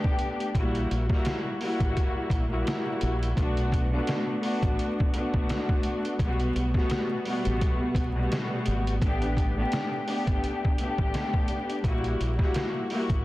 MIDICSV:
0, 0, Header, 1, 4, 480
1, 0, Start_track
1, 0, Key_signature, 2, "minor"
1, 0, Tempo, 705882
1, 373, Time_signature, 4, 2, 24, 8
1, 9009, End_track
2, 0, Start_track
2, 0, Title_t, "String section"
2, 0, Program_c, 0, 48
2, 0, Note_on_c, 0, 57, 96
2, 0, Note_on_c, 0, 59, 90
2, 0, Note_on_c, 0, 62, 90
2, 0, Note_on_c, 0, 67, 121
2, 325, Note_off_c, 0, 57, 0
2, 328, Note_off_c, 0, 59, 0
2, 331, Note_off_c, 0, 62, 0
2, 334, Note_off_c, 0, 67, 0
2, 369, Note_on_c, 0, 55, 100
2, 375, Note_on_c, 0, 58, 93
2, 381, Note_on_c, 0, 64, 91
2, 387, Note_on_c, 0, 66, 104
2, 715, Note_off_c, 0, 55, 0
2, 718, Note_off_c, 0, 58, 0
2, 721, Note_off_c, 0, 64, 0
2, 724, Note_off_c, 0, 66, 0
2, 736, Note_on_c, 0, 55, 88
2, 741, Note_on_c, 0, 58, 96
2, 747, Note_on_c, 0, 64, 85
2, 752, Note_on_c, 0, 66, 103
2, 1062, Note_off_c, 0, 55, 0
2, 1064, Note_off_c, 0, 58, 0
2, 1067, Note_off_c, 0, 64, 0
2, 1070, Note_off_c, 0, 66, 0
2, 1092, Note_on_c, 0, 55, 93
2, 1097, Note_on_c, 0, 58, 91
2, 1103, Note_on_c, 0, 64, 91
2, 1109, Note_on_c, 0, 66, 120
2, 1654, Note_off_c, 0, 55, 0
2, 1657, Note_off_c, 0, 58, 0
2, 1660, Note_off_c, 0, 64, 0
2, 1663, Note_off_c, 0, 66, 0
2, 1694, Note_on_c, 0, 55, 90
2, 1700, Note_on_c, 0, 58, 91
2, 1705, Note_on_c, 0, 64, 86
2, 1711, Note_on_c, 0, 66, 101
2, 2244, Note_off_c, 0, 55, 0
2, 2247, Note_off_c, 0, 58, 0
2, 2250, Note_off_c, 0, 64, 0
2, 2253, Note_off_c, 0, 66, 0
2, 2281, Note_on_c, 0, 57, 97
2, 2287, Note_on_c, 0, 59, 86
2, 2292, Note_on_c, 0, 62, 94
2, 2298, Note_on_c, 0, 66, 111
2, 2631, Note_off_c, 0, 57, 0
2, 2634, Note_off_c, 0, 59, 0
2, 2637, Note_off_c, 0, 62, 0
2, 2640, Note_off_c, 0, 66, 0
2, 2656, Note_on_c, 0, 57, 95
2, 2661, Note_on_c, 0, 59, 92
2, 2667, Note_on_c, 0, 62, 89
2, 2673, Note_on_c, 0, 66, 105
2, 2982, Note_off_c, 0, 57, 0
2, 2985, Note_off_c, 0, 59, 0
2, 2987, Note_off_c, 0, 62, 0
2, 2990, Note_off_c, 0, 66, 0
2, 2995, Note_on_c, 0, 57, 93
2, 3001, Note_on_c, 0, 59, 91
2, 3007, Note_on_c, 0, 62, 92
2, 3012, Note_on_c, 0, 66, 102
2, 3451, Note_off_c, 0, 57, 0
2, 3454, Note_off_c, 0, 59, 0
2, 3457, Note_off_c, 0, 62, 0
2, 3460, Note_off_c, 0, 66, 0
2, 3492, Note_on_c, 0, 57, 101
2, 3497, Note_on_c, 0, 59, 90
2, 3503, Note_on_c, 0, 62, 88
2, 3509, Note_on_c, 0, 66, 104
2, 4163, Note_off_c, 0, 57, 0
2, 4166, Note_off_c, 0, 59, 0
2, 4169, Note_off_c, 0, 62, 0
2, 4171, Note_off_c, 0, 66, 0
2, 4218, Note_on_c, 0, 47, 97
2, 4222, Note_on_c, 0, 55, 85
2, 4226, Note_on_c, 0, 57, 82
2, 4230, Note_on_c, 0, 59, 96
2, 4235, Note_on_c, 0, 66, 108
2, 4559, Note_off_c, 0, 47, 0
2, 4561, Note_off_c, 0, 55, 0
2, 4564, Note_off_c, 0, 57, 0
2, 4566, Note_off_c, 0, 59, 0
2, 4568, Note_off_c, 0, 66, 0
2, 4580, Note_on_c, 0, 47, 96
2, 4584, Note_on_c, 0, 55, 95
2, 4588, Note_on_c, 0, 57, 87
2, 4593, Note_on_c, 0, 59, 97
2, 4597, Note_on_c, 0, 66, 106
2, 4904, Note_off_c, 0, 47, 0
2, 4906, Note_off_c, 0, 55, 0
2, 4908, Note_off_c, 0, 57, 0
2, 4910, Note_off_c, 0, 59, 0
2, 4912, Note_off_c, 0, 66, 0
2, 4929, Note_on_c, 0, 47, 101
2, 4934, Note_on_c, 0, 55, 92
2, 4938, Note_on_c, 0, 57, 95
2, 4942, Note_on_c, 0, 59, 94
2, 4946, Note_on_c, 0, 66, 103
2, 5493, Note_off_c, 0, 47, 0
2, 5495, Note_off_c, 0, 55, 0
2, 5498, Note_off_c, 0, 57, 0
2, 5500, Note_off_c, 0, 59, 0
2, 5502, Note_off_c, 0, 66, 0
2, 5539, Note_on_c, 0, 47, 97
2, 5544, Note_on_c, 0, 55, 90
2, 5548, Note_on_c, 0, 57, 81
2, 5552, Note_on_c, 0, 59, 86
2, 5556, Note_on_c, 0, 66, 103
2, 6087, Note_off_c, 0, 47, 0
2, 6089, Note_off_c, 0, 55, 0
2, 6091, Note_off_c, 0, 57, 0
2, 6093, Note_off_c, 0, 59, 0
2, 6095, Note_off_c, 0, 66, 0
2, 6126, Note_on_c, 0, 57, 101
2, 6132, Note_on_c, 0, 59, 100
2, 6138, Note_on_c, 0, 62, 99
2, 6143, Note_on_c, 0, 67, 110
2, 6474, Note_off_c, 0, 57, 0
2, 6477, Note_off_c, 0, 59, 0
2, 6479, Note_off_c, 0, 62, 0
2, 6482, Note_off_c, 0, 67, 0
2, 6507, Note_on_c, 0, 57, 95
2, 6513, Note_on_c, 0, 59, 85
2, 6519, Note_on_c, 0, 62, 92
2, 6524, Note_on_c, 0, 67, 106
2, 6828, Note_off_c, 0, 57, 0
2, 6830, Note_off_c, 0, 59, 0
2, 6833, Note_off_c, 0, 62, 0
2, 6836, Note_off_c, 0, 67, 0
2, 6847, Note_on_c, 0, 57, 93
2, 6853, Note_on_c, 0, 59, 84
2, 6858, Note_on_c, 0, 62, 84
2, 6864, Note_on_c, 0, 67, 104
2, 7297, Note_off_c, 0, 57, 0
2, 7300, Note_off_c, 0, 59, 0
2, 7303, Note_off_c, 0, 62, 0
2, 7306, Note_off_c, 0, 67, 0
2, 7335, Note_on_c, 0, 57, 100
2, 7340, Note_on_c, 0, 59, 87
2, 7346, Note_on_c, 0, 62, 88
2, 7352, Note_on_c, 0, 67, 117
2, 8004, Note_off_c, 0, 57, 0
2, 8007, Note_off_c, 0, 59, 0
2, 8010, Note_off_c, 0, 62, 0
2, 8013, Note_off_c, 0, 67, 0
2, 8048, Note_on_c, 0, 55, 104
2, 8054, Note_on_c, 0, 58, 93
2, 8060, Note_on_c, 0, 64, 91
2, 8065, Note_on_c, 0, 66, 106
2, 8394, Note_off_c, 0, 55, 0
2, 8397, Note_off_c, 0, 58, 0
2, 8400, Note_off_c, 0, 64, 0
2, 8403, Note_off_c, 0, 66, 0
2, 8414, Note_on_c, 0, 55, 90
2, 8419, Note_on_c, 0, 58, 96
2, 8425, Note_on_c, 0, 64, 83
2, 8431, Note_on_c, 0, 66, 102
2, 8741, Note_off_c, 0, 55, 0
2, 8744, Note_off_c, 0, 58, 0
2, 8747, Note_off_c, 0, 64, 0
2, 8749, Note_off_c, 0, 66, 0
2, 8771, Note_on_c, 0, 55, 92
2, 8776, Note_on_c, 0, 58, 89
2, 8782, Note_on_c, 0, 64, 85
2, 8788, Note_on_c, 0, 66, 112
2, 9009, Note_off_c, 0, 55, 0
2, 9009, Note_off_c, 0, 58, 0
2, 9009, Note_off_c, 0, 64, 0
2, 9009, Note_off_c, 0, 66, 0
2, 9009, End_track
3, 0, Start_track
3, 0, Title_t, "Fingered electric bass"
3, 0, Program_c, 1, 33
3, 374, Note_on_c, 1, 34, 110
3, 584, Note_off_c, 1, 34, 0
3, 618, Note_on_c, 1, 34, 94
3, 735, Note_off_c, 1, 34, 0
3, 1227, Note_on_c, 1, 33, 85
3, 1319, Note_off_c, 1, 33, 0
3, 1565, Note_on_c, 1, 34, 93
3, 1779, Note_off_c, 1, 34, 0
3, 2057, Note_on_c, 1, 34, 87
3, 2266, Note_off_c, 1, 34, 0
3, 2293, Note_on_c, 1, 35, 105
3, 2714, Note_off_c, 1, 35, 0
3, 3147, Note_on_c, 1, 33, 79
3, 3239, Note_off_c, 1, 33, 0
3, 3631, Note_on_c, 1, 35, 95
3, 3721, Note_off_c, 1, 35, 0
3, 4213, Note_on_c, 1, 35, 100
3, 4424, Note_off_c, 1, 35, 0
3, 4457, Note_on_c, 1, 35, 90
3, 4575, Note_off_c, 1, 35, 0
3, 5074, Note_on_c, 1, 33, 94
3, 5163, Note_off_c, 1, 33, 0
3, 5406, Note_on_c, 1, 35, 95
3, 5619, Note_off_c, 1, 35, 0
3, 5898, Note_on_c, 1, 32, 90
3, 6106, Note_off_c, 1, 32, 0
3, 6133, Note_on_c, 1, 33, 105
3, 6554, Note_off_c, 1, 33, 0
3, 6986, Note_on_c, 1, 31, 88
3, 7079, Note_off_c, 1, 31, 0
3, 7471, Note_on_c, 1, 33, 92
3, 7561, Note_off_c, 1, 33, 0
3, 8053, Note_on_c, 1, 34, 108
3, 8263, Note_off_c, 1, 34, 0
3, 8298, Note_on_c, 1, 34, 92
3, 8415, Note_off_c, 1, 34, 0
3, 8907, Note_on_c, 1, 33, 89
3, 8999, Note_off_c, 1, 33, 0
3, 9009, End_track
4, 0, Start_track
4, 0, Title_t, "Drums"
4, 29, Note_on_c, 9, 36, 106
4, 97, Note_off_c, 9, 36, 0
4, 127, Note_on_c, 9, 42, 83
4, 195, Note_off_c, 9, 42, 0
4, 274, Note_on_c, 9, 42, 53
4, 342, Note_off_c, 9, 42, 0
4, 371, Note_on_c, 9, 36, 105
4, 376, Note_on_c, 9, 42, 91
4, 439, Note_off_c, 9, 36, 0
4, 444, Note_off_c, 9, 42, 0
4, 509, Note_on_c, 9, 42, 55
4, 577, Note_off_c, 9, 42, 0
4, 620, Note_on_c, 9, 42, 70
4, 688, Note_off_c, 9, 42, 0
4, 745, Note_on_c, 9, 36, 91
4, 764, Note_on_c, 9, 38, 35
4, 813, Note_off_c, 9, 36, 0
4, 832, Note_off_c, 9, 38, 0
4, 849, Note_on_c, 9, 42, 105
4, 859, Note_on_c, 9, 38, 123
4, 917, Note_off_c, 9, 42, 0
4, 927, Note_off_c, 9, 38, 0
4, 1093, Note_on_c, 9, 46, 53
4, 1161, Note_off_c, 9, 46, 0
4, 1225, Note_on_c, 9, 36, 95
4, 1227, Note_on_c, 9, 42, 61
4, 1293, Note_off_c, 9, 36, 0
4, 1295, Note_off_c, 9, 42, 0
4, 1338, Note_on_c, 9, 36, 84
4, 1338, Note_on_c, 9, 42, 84
4, 1406, Note_off_c, 9, 36, 0
4, 1406, Note_off_c, 9, 42, 0
4, 1564, Note_on_c, 9, 36, 90
4, 1572, Note_on_c, 9, 42, 83
4, 1632, Note_off_c, 9, 36, 0
4, 1640, Note_off_c, 9, 42, 0
4, 1816, Note_on_c, 9, 42, 107
4, 1821, Note_on_c, 9, 38, 106
4, 1884, Note_off_c, 9, 42, 0
4, 1889, Note_off_c, 9, 38, 0
4, 2047, Note_on_c, 9, 42, 83
4, 2115, Note_off_c, 9, 42, 0
4, 2194, Note_on_c, 9, 42, 55
4, 2262, Note_off_c, 9, 42, 0
4, 2291, Note_on_c, 9, 36, 105
4, 2296, Note_on_c, 9, 42, 91
4, 2359, Note_off_c, 9, 36, 0
4, 2364, Note_off_c, 9, 42, 0
4, 2428, Note_on_c, 9, 42, 57
4, 2496, Note_off_c, 9, 42, 0
4, 2530, Note_on_c, 9, 36, 89
4, 2540, Note_on_c, 9, 42, 69
4, 2598, Note_off_c, 9, 36, 0
4, 2608, Note_off_c, 9, 42, 0
4, 2770, Note_on_c, 9, 42, 102
4, 2780, Note_on_c, 9, 38, 119
4, 2838, Note_off_c, 9, 42, 0
4, 2848, Note_off_c, 9, 38, 0
4, 3013, Note_on_c, 9, 46, 52
4, 3081, Note_off_c, 9, 46, 0
4, 3145, Note_on_c, 9, 36, 97
4, 3147, Note_on_c, 9, 42, 60
4, 3213, Note_off_c, 9, 36, 0
4, 3215, Note_off_c, 9, 42, 0
4, 3258, Note_on_c, 9, 42, 87
4, 3326, Note_off_c, 9, 42, 0
4, 3400, Note_on_c, 9, 36, 102
4, 3468, Note_off_c, 9, 36, 0
4, 3493, Note_on_c, 9, 42, 80
4, 3561, Note_off_c, 9, 42, 0
4, 3629, Note_on_c, 9, 36, 103
4, 3697, Note_off_c, 9, 36, 0
4, 3736, Note_on_c, 9, 42, 99
4, 3741, Note_on_c, 9, 38, 105
4, 3804, Note_off_c, 9, 42, 0
4, 3809, Note_off_c, 9, 38, 0
4, 3869, Note_on_c, 9, 36, 98
4, 3937, Note_off_c, 9, 36, 0
4, 3967, Note_on_c, 9, 42, 83
4, 4035, Note_off_c, 9, 42, 0
4, 4113, Note_on_c, 9, 42, 55
4, 4181, Note_off_c, 9, 42, 0
4, 4211, Note_on_c, 9, 36, 107
4, 4216, Note_on_c, 9, 42, 91
4, 4279, Note_off_c, 9, 36, 0
4, 4284, Note_off_c, 9, 42, 0
4, 4349, Note_on_c, 9, 42, 56
4, 4417, Note_off_c, 9, 42, 0
4, 4460, Note_on_c, 9, 42, 72
4, 4528, Note_off_c, 9, 42, 0
4, 4585, Note_on_c, 9, 36, 90
4, 4604, Note_on_c, 9, 38, 36
4, 4653, Note_off_c, 9, 36, 0
4, 4672, Note_off_c, 9, 38, 0
4, 4690, Note_on_c, 9, 42, 104
4, 4699, Note_on_c, 9, 38, 124
4, 4758, Note_off_c, 9, 42, 0
4, 4767, Note_off_c, 9, 38, 0
4, 4933, Note_on_c, 9, 46, 52
4, 5001, Note_off_c, 9, 46, 0
4, 5067, Note_on_c, 9, 42, 59
4, 5135, Note_off_c, 9, 42, 0
4, 5178, Note_on_c, 9, 36, 86
4, 5178, Note_on_c, 9, 42, 87
4, 5246, Note_off_c, 9, 36, 0
4, 5246, Note_off_c, 9, 42, 0
4, 5404, Note_on_c, 9, 36, 90
4, 5412, Note_on_c, 9, 42, 83
4, 5472, Note_off_c, 9, 36, 0
4, 5480, Note_off_c, 9, 42, 0
4, 5656, Note_on_c, 9, 42, 103
4, 5661, Note_on_c, 9, 38, 111
4, 5724, Note_off_c, 9, 42, 0
4, 5729, Note_off_c, 9, 38, 0
4, 5886, Note_on_c, 9, 42, 82
4, 5954, Note_off_c, 9, 42, 0
4, 6033, Note_on_c, 9, 42, 55
4, 6101, Note_off_c, 9, 42, 0
4, 6131, Note_on_c, 9, 36, 102
4, 6134, Note_on_c, 9, 42, 89
4, 6199, Note_off_c, 9, 36, 0
4, 6202, Note_off_c, 9, 42, 0
4, 6268, Note_on_c, 9, 42, 57
4, 6336, Note_off_c, 9, 42, 0
4, 6370, Note_on_c, 9, 36, 90
4, 6379, Note_on_c, 9, 42, 70
4, 6438, Note_off_c, 9, 36, 0
4, 6447, Note_off_c, 9, 42, 0
4, 6609, Note_on_c, 9, 42, 105
4, 6619, Note_on_c, 9, 38, 118
4, 6677, Note_off_c, 9, 42, 0
4, 6687, Note_off_c, 9, 38, 0
4, 6852, Note_on_c, 9, 46, 53
4, 6920, Note_off_c, 9, 46, 0
4, 6985, Note_on_c, 9, 36, 97
4, 6986, Note_on_c, 9, 42, 60
4, 7053, Note_off_c, 9, 36, 0
4, 7054, Note_off_c, 9, 42, 0
4, 7097, Note_on_c, 9, 42, 88
4, 7165, Note_off_c, 9, 42, 0
4, 7240, Note_on_c, 9, 36, 99
4, 7308, Note_off_c, 9, 36, 0
4, 7333, Note_on_c, 9, 42, 80
4, 7401, Note_off_c, 9, 42, 0
4, 7469, Note_on_c, 9, 36, 98
4, 7537, Note_off_c, 9, 36, 0
4, 7575, Note_on_c, 9, 42, 102
4, 7581, Note_on_c, 9, 38, 104
4, 7643, Note_off_c, 9, 42, 0
4, 7649, Note_off_c, 9, 38, 0
4, 7708, Note_on_c, 9, 36, 101
4, 7776, Note_off_c, 9, 36, 0
4, 7806, Note_on_c, 9, 42, 84
4, 7874, Note_off_c, 9, 42, 0
4, 7953, Note_on_c, 9, 42, 55
4, 8021, Note_off_c, 9, 42, 0
4, 8051, Note_on_c, 9, 36, 103
4, 8055, Note_on_c, 9, 42, 89
4, 8119, Note_off_c, 9, 36, 0
4, 8123, Note_off_c, 9, 42, 0
4, 8188, Note_on_c, 9, 42, 56
4, 8256, Note_off_c, 9, 42, 0
4, 8300, Note_on_c, 9, 42, 73
4, 8368, Note_off_c, 9, 42, 0
4, 8425, Note_on_c, 9, 36, 90
4, 8445, Note_on_c, 9, 38, 37
4, 8493, Note_off_c, 9, 36, 0
4, 8513, Note_off_c, 9, 38, 0
4, 8530, Note_on_c, 9, 42, 104
4, 8540, Note_on_c, 9, 38, 120
4, 8598, Note_off_c, 9, 42, 0
4, 8608, Note_off_c, 9, 38, 0
4, 8773, Note_on_c, 9, 46, 51
4, 8841, Note_off_c, 9, 46, 0
4, 8905, Note_on_c, 9, 36, 99
4, 8907, Note_on_c, 9, 42, 60
4, 8973, Note_off_c, 9, 36, 0
4, 8975, Note_off_c, 9, 42, 0
4, 9009, End_track
0, 0, End_of_file